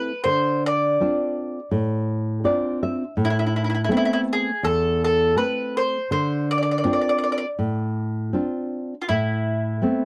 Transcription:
0.00 0.10 A3 soft
0.00 0.11 C4 soft
0.00 0.11 E4 soft
0.00 0.23 B4 medium
0.24 0.97 D3 medium
0.24 0.63 C5 medium
0.66 1.69 D5 medium
1.00 1.58 C4 soft
1.00 1.59 D4 soft
1.00 1.59 F4 soft
1.71 2.42 A2 medium
2.44 3.03 C4 soft
2.44 3.03 D4 soft
2.44 3.04 F4 soft
2.44 2.82 D5 medium
2.83 3.15 E5 medium
3.17 3.88 A2 medium
3.25 3.29 E4 medium
3.30 3.37 E4 medium
3.39 3.45 E4 medium
3.47 3.53 E4 soft
3.56 3.62 E4 soft
3.64 3.69 E4 soft
3.70 3.73 E4 medium
3.75 3.81 E4 soft
3.84 3.89 E4 medium
3.89 4.48 A3 soft
3.89 4.49 B3 soft
3.89 4.49 C4 soft
3.89 3.96 E4 soft
3.97 4.03 E4 medium
4.05 4.12 E4 medium
4.13 4.20 E4 medium
4.33 4.66 G#4 medium
4.63 5.35 E2 medium
4.63 5.02 A4 medium
5.04 5.35 A4 medium
5.36 5.95 A3 soft
5.36 5.96 C4 soft
5.36 5.77 B4 medium
5.77 6.11 C5 medium
6.11 6.82 D3 medium
6.11 6.49 C5 medium
6.51 6.57 D5 medium
6.58 6.61 D5 medium
6.63 6.70 D5 medium
6.71 6.77 D5 medium
6.78 6.83 D5 medium
6.84 7.44 C4 soft
6.84 7.44 D4 soft
6.84 7.44 F4 soft
6.84 6.92 D5 medium
6.93 7.00 D5 medium
7.01 7.08 D5 soft
7.09 7.17 D5 medium
7.18 7.22 D5 medium
7.24 7.31 D5 medium
7.32 7.37 D5 medium
7.38 7.45 D5 medium
7.59 8.31 A2 medium
8.33 8.93 C4 soft
8.33 8.93 D4 soft
8.33 8.94 F4 soft
9.02 9.08 F4 medium
9.09 9.81 A2 medium
9.09 10.05 E4 medium
9.82 10.05 A3 soft
9.82 10.05 B3 soft
9.82 10.05 C4 soft

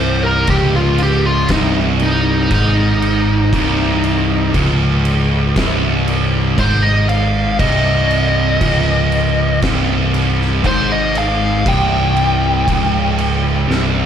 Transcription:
0.00 0.44 C1 medium
0.00 0.47 C2 loud
0.00 0.22 C5 loud
0.23 0.47 A#4 medium
0.47 1.45 C#1 medium
0.47 1.48 C#2 loud
0.47 0.74 G4 loud
0.47 kick loud
0.47 crash medium
0.76 0.99 F4 medium
0.98 crash medium
1.03 1.25 G4 medium
1.26 1.50 F4 medium
1.49 2.47 C1 loud
1.49 2.50 C2 loud
1.49 1.75 D#4 medium
1.49 kick loud
1.49 snare loud
1.49 crash medium
2.00 2.51 D#4 medium
2.00 crash medium
2.51 3.49 G#1 loud
2.51 3.52 G#2 loud
2.51 4.52 D#4 loud
2.51 kick loud
2.51 crash medium
3.02 crash medium
3.53 4.50 C1 medium
3.53 4.53 C2 loud
3.53 kick loud
3.53 crash medium
4.04 crash medium
4.54 5.52 C#1 loud
4.54 5.55 C#2 loud
4.54 kick loud
4.54 crash medium
5.05 crash medium
5.55 6.54 C1 loud
5.55 6.57 C2 loud
5.55 kick loud
5.55 snare loud
5.55 crash medium
6.08 crash medium
6.57 7.56 G#1 loud
6.57 7.58 G#2 loud
6.57 6.83 C5 loud
6.57 kick loud
6.57 crash medium
6.82 7.08 D#5 medium
7.09 7.58 F5 medium
7.09 crash medium
7.59 8.57 C1 loud
7.59 8.60 C2 loud
7.59 9.59 D#5 loud
7.59 kick loud
7.59 crash loud
8.11 crash medium
8.61 9.59 C#1 loud
8.61 9.61 C#2 loud
8.61 kick loud
8.61 crash medium
9.12 crash medium
9.62 10.60 C1 medium
9.62 10.63 C2 loud
9.62 kick loud
9.62 snare loud
9.62 crash medium
10.14 crash medium
10.41 snare soft
10.63 11.62 G#1 loud
10.63 11.64 G#2 loud
10.63 10.90 C5 loud
10.63 kick loud
10.63 crash medium
10.92 11.16 D#5 loud
11.15 11.66 F5 medium
11.15 crash medium
11.66 12.64 C1 loud
11.66 12.66 C2 loud
11.66 13.67 G5 loud
11.66 kick loud
11.66 crash medium
12.17 crash medium
12.68 13.65 C#1 loud
12.68 13.68 C#2 loud
12.68 kick loud
12.68 crash medium
13.18 crash medium
13.68 14.06 C1 loud
13.68 14.06 C2 loud
13.68 snare medium

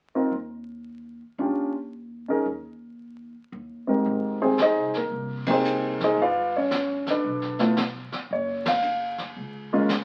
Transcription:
0.15 0.31 C4 medium
0.15 0.31 D#4 soft
0.15 0.32 F4 medium
0.15 0.32 A#4 medium
0.32 1.21 D#2 medium
1.38 2.27 D#2 medium
1.38 1.71 C#4 medium
1.38 1.71 D4 medium
1.38 1.72 F4 soft
1.38 1.72 G4 medium
2.28 2.44 C#4 medium
2.28 2.45 D#4 soft
2.28 2.45 G#4 soft
2.28 2.45 A#4 medium
2.45 3.34 D#2 medium
3.52 4.02 D#2 medium
3.87 4.55 G#2 medium
3.87 4.41 C4 soft
3.87 4.55 D#4 soft
3.87 4.41 G4 medium
3.87 4.56 A#4 medium
4.05 4.72 G#1 medium
4.05 brush sweep soft
4.42 4.59 C4 medium
4.42 4.59 G4 medium
4.42 4.59 G#4 medium
4.42 4.59 C5 medium
4.58 4.95 D#5 medium
4.58 snare medium
4.58 hi-hat pedal soft
4.62 4.95 D#4 medium
4.62 4.95 G#4 medium
4.62 4.95 C5 medium
4.76 4.93 C2 medium
4.94 5.11 A1 medium
4.94 5.45 A#3 medium
4.94 5.45 A#4 medium
4.94 snare soft
5.11 6.14 C2 medium
5.11 brush sweep soft
5.46 6.14 A#3 medium
5.46 5.49 C4 medium
5.46 6.03 D#4 medium
5.46 5.98 C5 medium
5.46 6.15 G5 medium
5.46 kick medium
5.46 ride medium
5.51 5.98 C4 medium
5.51 5.98 G4 medium
5.51 5.98 G#4 medium
5.65 hi-hat pedal medium
6.00 kick soft
6.00 snare soft
6.04 6.19 D#4 medium
6.04 6.20 G#4 medium
6.04 6.19 C5 medium
6.04 6.19 D#5 medium
6.18 7.20 G1 medium
6.18 brush sweep soft
6.22 6.55 F4 medium
6.22 6.55 B4 medium
6.22 6.54 D5 medium
6.22 6.54 F5 loud
6.57 7.05 C#4 medium
6.57 7.04 C#5 medium
6.71 snare medium
6.71 hi-hat pedal medium
7.06 7.58 A4 medium
7.06 7.58 D5 medium
7.06 snare soft
7.10 7.58 D4 medium
7.10 7.58 B4 medium
7.24 8.09 B1 medium
7.24 brush sweep soft
7.42 snare soft
7.59 7.75 A3 medium
7.59 7.76 B3 medium
7.59 7.76 E4 medium
7.59 7.76 F4 medium
7.59 snare soft
7.77 snare medium
7.77 hi-hat pedal medium
8.12 muted upright bass stroke soft
8.12 snare soft
8.30 9.32 F#1 medium
8.30 8.66 C#5 medium
8.30 brush sweep soft
8.66 9.16 F5 medium
8.66 snare medium
8.66 ride medium
8.83 hi-hat pedal soft
9.18 snare soft
9.35 10.04 C#2 medium
9.35 brush sweep soft
9.73 9.88 G#3 medium
9.73 9.88 A#3 medium
9.73 9.88 C#4 medium
9.73 9.88 F4 medium
9.89 snare medium
9.89 hi-hat pedal medium

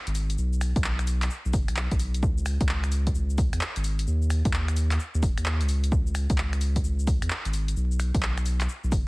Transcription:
0.07 0.36 G#1 medium
0.07 closed hi-hat medium
0.07 shaker soft
0.15 open hi-hat loud
0.15 shaker medium
0.30 closed hi-hat medium
0.30 shaker soft
0.38 0.73 B1 medium
0.38 shaker soft
0.53 shaker soft
0.61 finger snap medium
0.61 open hi-hat loud
0.61 shaker medium
0.76 1.29 B1 loud
0.76 kick loud
0.76 closed hi-hat medium
0.76 shaker soft
0.84 clap loud
0.84 shaker soft
0.99 finger snap medium
0.99 closed hi-hat soft
0.99 shaker soft
1.07 open hi-hat loud
1.07 shaker medium
1.22 clap medium
1.22 closed hi-hat medium
1.22 shaker soft
1.30 shaker soft
1.45 1.55 B1 loud
1.45 shaker soft
1.53 1.67 F#1 medium
1.53 kick loud
1.53 open hi-hat loud
1.53 shaker medium
1.68 1.88 B1 medium
1.68 finger snap medium
1.68 closed hi-hat medium
1.68 shaker soft
1.77 clap loud
1.77 shaker soft
1.91 2.24 B1 loud
1.91 kick medium
1.91 closed hi-hat medium
1.91 shaker soft
1.99 open hi-hat loud
1.99 shaker medium
2.14 closed hi-hat medium
2.14 shaker soft
2.23 2.58 C#2 loud
2.23 kick loud
2.23 shaker soft
2.38 shaker soft
2.46 finger snap medium
2.46 open hi-hat loud
2.46 shaker medium
2.61 3.13 C#2 loud
2.61 kick loud
2.61 closed hi-hat medium
2.61 shaker soft
2.69 clap loud
2.69 shaker soft
2.84 finger snap medium
2.84 closed hi-hat soft
2.84 shaker soft
2.92 open hi-hat loud
2.92 shaker medium
3.07 kick medium
3.07 closed hi-hat medium
3.07 shaker soft
3.15 3.50 C#2 medium
3.15 shaker soft
3.30 shaker soft
3.38 kick loud
3.38 open hi-hat loud
3.38 shaker medium
3.53 3.60 E2 loud
3.53 finger snap medium
3.53 closed hi-hat medium
3.53 shaker soft
3.61 clap loud
3.61 shaker soft
3.76 4.06 G#1 medium
3.76 closed hi-hat medium
3.76 shaker soft
3.84 open hi-hat loud
3.84 shaker medium
3.99 closed hi-hat medium
3.99 shaker soft
4.07 4.42 D#2 medium
4.07 shaker soft
4.22 shaker soft
4.30 finger snap medium
4.30 open hi-hat loud
4.30 shaker medium
4.45 4.98 D#2 loud
4.45 kick loud
4.45 closed hi-hat medium
4.45 shaker soft
4.53 clap loud
4.53 shaker soft
4.68 finger snap medium
4.68 closed hi-hat soft
4.68 shaker soft
4.77 open hi-hat loud
4.77 shaker medium
4.91 clap medium
4.91 closed hi-hat medium
4.91 shaker soft
5.00 shaker soft
5.14 5.24 D#2 loud
5.14 shaker soft
5.23 5.36 D#1 medium
5.23 kick loud
5.23 open hi-hat loud
5.23 shaker medium
5.38 5.62 D#2 medium
5.38 finger snap medium
5.38 closed hi-hat medium
5.38 shaker soft
5.46 clap loud
5.46 shaker soft
5.61 6.27 C#2 loud
5.61 closed hi-hat medium
5.61 shaker soft
5.69 open hi-hat loud
5.69 shaker medium
5.84 closed hi-hat medium
5.84 shaker soft
5.92 kick loud
5.92 shaker soft
6.07 shaker soft
6.15 finger snap medium
6.15 open hi-hat loud
6.15 shaker medium
6.30 6.83 C#2 loud
6.30 kick loud
6.30 closed hi-hat medium
6.30 shaker soft
6.38 clap loud
6.38 shaker soft
6.53 finger snap medium
6.53 closed hi-hat soft
6.53 shaker soft
6.61 open hi-hat loud
6.61 shaker medium
6.76 kick medium
6.76 closed hi-hat medium
6.76 shaker soft
6.84 7.19 C#2 medium
6.84 shaker soft
6.99 shaker soft
7.07 kick loud
7.07 open hi-hat loud
7.07 shaker medium
7.22 7.29 E2 loud
7.22 finger snap medium
7.22 closed hi-hat medium
7.22 shaker soft
7.30 clap loud
7.30 shaker soft
7.45 7.75 G#1 medium
7.45 closed hi-hat medium
7.45 shaker soft
7.53 open hi-hat loud
7.53 shaker medium
7.68 closed hi-hat medium
7.68 shaker soft
7.76 8.12 B1 medium
7.76 shaker soft
7.91 shaker soft
8.00 finger snap medium
8.00 open hi-hat loud
8.00 shaker medium
8.15 8.67 B1 loud
8.15 kick loud
8.15 closed hi-hat medium
8.15 shaker soft
8.23 clap loud
8.23 shaker soft
8.38 finger snap medium
8.38 closed hi-hat soft
8.38 shaker soft
8.46 open hi-hat loud
8.46 shaker medium
8.61 clap medium
8.61 closed hi-hat medium
8.61 shaker soft
8.69 shaker soft
8.84 8.93 B1 loud
8.84 shaker soft
8.92 9.08 F#1 medium
8.92 kick loud
8.92 open hi-hat loud
8.92 shaker medium

